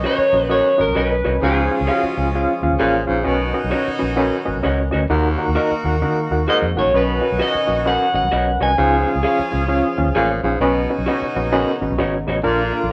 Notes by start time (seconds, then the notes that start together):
Already playing: B2 D#3 F#3 B3 C#4 D#4 B4
0.04 C#4 F#4 B4 C#5 D#5
0.18 muted fingered electric bass stroke
0.33 A#1 C#4 F#4 B4 D#5
0.50 F#2 C#4 F#4 B4 C#5 D#5
0.78 G#1 C#4 F#4 A#4 B4 D#5
0.88 B1
0.95 B1 C#4 F#4 B4 C#5 D#5
1.24 C2 C#4 F#4 B4 C#5 D#5
1.41 C#2 G#2 C#3 F3 G#3 C#4 F4 G#4 F5
1.71 C#4 F4 G#4 F5
1.81 C#2
1.87 C#4 F4 G#4 C#5 F5
1.96 F#4
2.03 muted fingered electric bass stroke
2.18 C#2 C#4 F4 G#4 F5
2.35 C#4 F4 G#4 F5
2.63 D#2 C#4 F4 G#4 F5
2.72 C#2
2.79 A1 A#2 C#4 F4 G#4 C#5 F5
3.07 A#1 G#2 C#4 F4 G#4 F5
3.24 B1 B2 D#3 C#4 D#4 F#4 B4 D#5
3.54 C#4 F#4 B4 D#5
3.64 B1
3.70 C#4 F#4 B4 C#5 D#5
3.88 muted fingered electric bass stroke
3.99 A#1 C#4 F#4 B4 D#5
4.16 F#2 C#4 F#4 B4 D#5
4.45 G#1 C#4 F#4 B4 D#5
4.56 B1
4.63 C#2 C#4 F#4 B4 C#5 D#5
4.91 D2 C#4 F#4 B4 C#5 D#5
5.10 D#2 D#3 A#3 D#4 F#4 A#4 F#5
5.38 D#4 F#4 A#4 F#5
5.48 D#2
5.55 D#4 F#4 A#4 D#5 F#5
5.71 muted fingered electric bass stroke
5.85 D#2 D#4 F#4 A#4 F#5
6.02 D#3 D#4 F#4 A#4 F#5
6.31 D#2 D#4 F#4 A#4 F#5
6.48 G#2 D#4 F#4 A#4 D#5 F#5
6.62 F2
6.76 A1 F#2 D#4 F#4 A#4 C#5 F#5
6.86 A#1
6.94 B1 B2 C#4 D#4 F#4 B4 D#5
7.21 C#4 F#4 B4 D#5
7.32 B1
7.38 C#4 F#4 B4 C#5 D#5
7.42 D#5
7.55 muted fingered electric bass stroke
7.67 A#1 C#4 F#4 B4 D#5
7.86 F#2 C#4 F#4 B4 D#5 F#5
8.14 G#1 C#4 F#4 B4 D#5 F#5
8.23 B1
8.32 B1 C#4 F#4 B4 C#5 D#5
8.60 C2 C#4 F#4 B4 C#5 D#5 G#5
8.78 C#2 G#2 C#3 F3 C#4 F4 G#4 F5
9.06 C#4 F4 G#4 F5
9.16 C#2
9.23 C#4 F4 G#4 C#5 F5
9.39 muted fingered electric bass stroke
9.51 C#2 C#4 F4 G#4 F5
9.68 C#4 F4 G#4 F5
9.98 D#2 C#4 F4 G#4 F5
10.07 C#2
10.15 A1 A#2 C#4 F4 G#4 C#5 F5
10.43 A#1 G#2 C#4 F4 G#4 F5
10.60 B1 B2 C#3 B3 C#4 D#4 F#4 B4 D#5
10.90 C#4 F#4 B4 D#5
10.99 B1
11.06 C#4 F#4 B4 C#5 D#5
11.22 muted fingered electric bass stroke
11.36 A#1 C#4 F#4 B4 D#5
11.52 F#2 C#4 F#4 B4 D#5
11.82 G#1 C#4 F#4 B4 D#5
11.91 B1
11.98 G#1 C#4 F#4 B4 C#5 D#5
12.27 A1 C#4 F#4 B4 C#5 D#5
12.44 A#1 A#2 D3 A#3 D4 F4 A#4 F5
12.73 D4 F4 A#4 F5
12.84 A#1